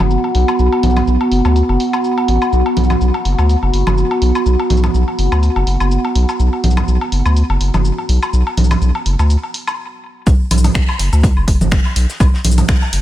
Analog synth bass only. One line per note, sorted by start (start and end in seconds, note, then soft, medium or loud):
0.00 0.17 F#1 medium
0.35 0.45 B1 medium
0.59 0.69 B1 loud
0.83 1.02 B1 medium
1.07 1.17 B1 loud
1.31 1.42 F#1 medium
1.45 1.62 D2 medium
1.69 1.77 F#1 loud
2.28 2.38 A1 medium
2.53 2.63 B1 medium
2.77 2.95 B1 medium
3.01 3.11 B1 loud
3.25 3.35 F#1 medium
3.38 3.56 D2 medium
3.63 3.71 F#1 loud
3.73 3.83 F#1 medium
3.87 4.04 F#1 medium
4.22 4.32 B1 medium
4.46 4.56 B1 loud
4.70 4.89 B1 medium
4.94 5.04 B1 loud
5.19 5.29 F#1 medium
5.32 5.49 D2 loud
5.56 5.64 F#1 loud
5.67 5.77 F#1 medium
5.80 5.98 F#1 medium
6.15 6.25 B1 medium
6.39 6.49 B1 loud
6.64 6.82 B1 medium
6.88 6.98 B1 loud
7.12 7.22 F#1 medium
7.25 7.43 D2 medium
7.50 7.58 F#1 loud
7.60 7.70 F#1 medium
7.74 7.91 F#1 medium
8.09 8.19 B1 medium
8.33 8.43 B1 loud
8.57 8.76 B1 medium
8.81 8.91 B1 loud
9.06 9.16 F#1 medium
9.19 9.36 D2 medium
10.27 10.37 B1 loud
10.51 10.70 B1 medium
10.75 10.85 B1 loud
10.99 11.09 F#1 medium
11.13 11.30 D2 loud
11.37 11.45 F#1 loud
11.48 11.58 F#1 medium
11.61 11.78 F#1 medium
11.96 12.06 B1 loud
12.20 12.30 B1 loud
12.44 12.63 B1 medium
12.69 12.79 B1 loud
12.93 13.02 F#1 medium